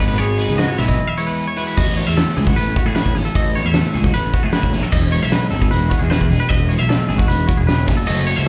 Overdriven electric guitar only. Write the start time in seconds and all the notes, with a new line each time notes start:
0.00 D#3 G#3 B3 D#4
0.38 D#3 G#3 B3 D#4
0.78 D#3 G#3 B3 D#4
1.18 E3 G#3 B3 E4
1.57 E3 G#3 B3 E4
8.06 F#2 C#3 F#3 A3 C#4
8.26 F#3 A3 C#4